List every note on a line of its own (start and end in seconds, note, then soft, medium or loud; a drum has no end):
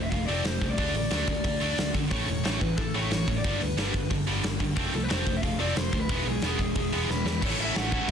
0.00 0.10 F3 medium
0.00 0.10 A3 medium
0.00 0.07 E5 medium
0.11 0.24 F1 medium
0.11 0.26 F3 medium
0.11 0.27 A3 medium
0.11 0.26 F5 loud
0.11 kick loud
0.11 open hi-hat medium
0.27 0.41 F1 medium
0.27 0.44 F3 medium
0.27 0.44 A3 medium
0.27 0.44 C4 loud
0.27 0.45 D5 medium
0.27 open hi-hat medium
0.44 0.57 F1 medium
0.44 0.60 F3 medium
0.44 0.60 A3 medium
0.44 0.68 C5 medium
0.44 snare loud
0.44 open hi-hat medium
0.61 0.74 C2 medium
0.61 0.77 F3 medium
0.61 0.77 A3 medium
0.61 kick medium
0.61 open hi-hat medium
0.70 0.93 D5 medium
0.78 0.90 D2 medium
0.78 0.94 D3 medium
0.78 0.94 A3 medium
0.78 0.94 D4 medium
0.78 kick loud
0.78 open hi-hat medium
0.94 1.07 A1 medium
0.94 1.09 D3 medium
0.94 1.10 A3 medium
0.94 1.90 D5 loud
0.94 open hi-hat medium
1.11 1.23 D2 medium
1.11 1.27 D3 medium
1.11 1.27 A3 medium
1.11 1.27 D4 loud
1.11 snare loud
1.11 open hi-hat medium
1.27 1.40 D2 medium
1.27 1.43 D3 medium
1.27 1.43 A3 medium
1.27 kick medium
1.27 open hi-hat medium
1.44 1.57 D2 medium
1.44 1.59 D3 medium
1.44 1.59 A3 medium
1.44 kick loud
1.44 open hi-hat medium
1.61 1.73 D2 medium
1.61 1.77 D3 medium
1.61 1.77 A3 loud
1.61 1.77 D4 loud
1.61 open hi-hat medium
1.78 1.90 D2 medium
1.78 1.93 D3 medium
1.78 1.93 A3 medium
1.78 snare loud
1.78 open hi-hat medium
1.94 2.09 D3 medium
1.94 2.07 D3 medium
1.94 2.10 A3 medium
1.94 kick medium
1.94 open hi-hat medium
2.11 2.24 A1 medium
2.11 2.27 A2 medium
2.11 2.27 E3 medium
2.11 2.27 A3 medium
2.11 2.62 C#5 loud
2.11 kick loud
2.11 open hi-hat medium
2.28 2.40 E1 medium
2.28 2.43 A2 medium
2.28 2.43 E3 medium
2.28 open hi-hat medium
2.44 2.57 A1 medium
2.44 2.59 A2 medium
2.44 2.60 E3 loud
2.44 2.60 A3 loud
2.44 snare loud
2.44 open hi-hat medium
2.60 2.74 A1 medium
2.60 2.76 A2 medium
2.60 2.76 E3 medium
2.60 2.77 B4 medium
2.60 kick medium
2.60 open hi-hat medium
2.78 2.90 A1 medium
2.78 2.93 A2 medium
2.78 2.93 E3 medium
2.78 2.93 A4 medium
2.78 kick loud
2.78 open hi-hat medium
2.94 3.07 A1 medium
2.94 3.10 A2 medium
2.94 3.10 E3 loud
2.94 3.10 A3 loud
2.94 3.10 C#5 medium
2.94 open hi-hat soft
3.11 3.23 A1 medium
3.11 3.26 A2 medium
3.11 3.26 E3 medium
3.11 3.35 C#5 medium
3.11 snare loud
3.11 open hi-hat medium
3.28 3.40 A2 medium
3.28 3.43 A2 medium
3.28 3.43 E3 medium
3.28 kick medium
3.28 open hi-hat medium
3.38 3.62 D5 medium
3.44 3.57 G1 medium
3.44 3.60 G2 medium
3.44 3.60 D3 medium
3.44 3.60 G3 medium
3.44 kick loud
3.44 open hi-hat medium
3.61 3.73 D2 medium
3.61 3.76 G2 medium
3.61 3.76 D3 medium
3.61 4.07 B4 medium
3.61 open hi-hat medium
3.77 3.89 G1 medium
3.77 3.93 G2 medium
3.77 3.93 D3 medium
3.77 3.93 G3 loud
3.77 snare loud
3.77 open hi-hat medium
3.94 4.06 G1 medium
3.94 4.09 G2 medium
3.94 4.09 D3 medium
3.94 kick medium
3.94 open hi-hat medium
4.10 4.23 G1 medium
4.10 4.25 G2 medium
4.10 4.26 D3 medium
4.10 kick loud
4.10 open hi-hat medium
4.27 4.40 G1 medium
4.27 4.43 G2 medium
4.27 4.43 D3 medium
4.27 4.43 G3 loud
4.27 open hi-hat medium
4.44 4.59 G2 medium
4.44 4.59 D3 medium
4.44 snare loud
4.44 open hi-hat medium
4.60 4.75 G2 medium
4.60 4.73 G2 medium
4.60 4.75 D3 medium
4.60 kick medium
4.60 open hi-hat medium
4.76 4.89 F1 medium
4.76 4.92 F3 medium
4.76 4.92 A3 medium
4.76 4.92 C4 loud
4.76 kick loud
4.76 open hi-hat medium
4.93 5.06 C2 medium
4.93 5.08 F3 medium
4.93 5.08 A3 medium
4.93 5.03 A4 medium
4.93 open hi-hat medium
5.03 5.11 B4 medium
5.09 5.23 F1 medium
5.09 5.25 F3 medium
5.09 5.25 A3 medium
5.09 5.25 C4 loud
5.09 5.37 C5 medium
5.09 snare loud
5.09 open hi-hat medium
5.26 5.39 F1 medium
5.26 5.41 F3 medium
5.26 5.42 A3 medium
5.26 kick medium
5.26 open hi-hat medium
5.37 5.43 E5 medium
5.43 5.56 F1 medium
5.43 5.58 F3 medium
5.43 5.58 A3 medium
5.43 5.59 F5 loud
5.43 kick loud
5.43 open hi-hat medium
5.59 5.72 F1 medium
5.59 5.75 F3 medium
5.59 5.76 A3 loud
5.59 5.76 C4 loud
5.59 5.76 D5 medium
5.59 open hi-hat medium
5.76 5.89 F1 medium
5.76 5.91 F3 medium
5.76 5.92 A3 medium
5.76 6.00 C5 medium
5.76 snare loud
5.76 open hi-hat medium
5.93 6.05 D2 medium
5.93 6.08 F3 medium
5.93 6.08 A3 medium
5.93 kick medium
5.93 open hi-hat medium
6.01 6.27 B4 medium
6.09 6.22 E1 medium
6.09 6.26 E3 medium
6.09 6.26 G#3 medium
6.09 6.26 B3 loud
6.09 kick loud
6.09 open hi-hat medium
6.25 6.38 B1 medium
6.25 6.42 E3 medium
6.25 6.42 G#3 medium
6.25 7.22 G#4 medium
6.25 open hi-hat medium
6.42 6.55 E1 medium
6.42 6.59 E3 medium
6.42 6.59 G#3 medium
6.42 6.59 B3 medium
6.42 snare loud
6.42 open hi-hat medium
6.59 6.71 E1 medium
6.59 6.75 E3 medium
6.59 6.75 G#3 medium
6.59 kick medium
6.59 open hi-hat medium
6.75 6.88 E1 medium
6.75 6.91 E3 medium
6.75 6.91 G#3 medium
6.75 kick loud
6.75 open hi-hat medium
6.91 7.04 E1 medium
6.91 7.08 E3 medium
6.91 7.08 G#3 medium
6.91 7.09 B3 medium
6.91 open hi-hat medium
7.08 7.21 E1 medium
7.08 7.24 E3 medium
7.08 7.25 G#3 medium
7.08 7.26 B4 medium
7.08 snare medium
7.25 7.44 E2 medium
7.25 7.41 E3 medium
7.25 7.41 G#3 medium
7.25 7.44 B4 medium
7.25 snare medium
7.41 7.53 A1 loud
7.41 7.59 A2 medium
7.41 7.93 A2 loud
7.41 7.93 E3 medium
7.41 7.58 E3 loud
7.41 7.93 A3 loud
7.41 7.58 A3 loud
7.41 7.92 C#4 loud
7.41 7.92 E4 loud
7.41 7.91 A4 loud
7.41 7.60 C#5 loud
7.41 kick loud
7.41 crash loud
7.41 crash medium
7.58 7.69 A1 medium
7.58 7.74 A2 medium
7.58 7.74 E3 medium
7.58 7.75 A3 loud
7.58 7.76 E5 medium
7.74 7.96 A1 medium
7.74 7.92 A2 medium
7.74 7.91 E3 medium
7.74 7.91 A3 medium
7.74 8.09 F#5 medium
7.74 snare loud
7.74 crash medium
7.91 8.07 A2 medium
7.91 8.11 A2 medium
7.91 8.08 E3 medium
7.91 8.11 E3 medium
7.91 8.08 A3 medium
7.91 8.11 A3 medium
7.91 8.11 C#4 medium
7.91 8.11 E4 medium
7.91 8.11 A4 medium
7.91 kick medium
8.08 8.11 A2 medium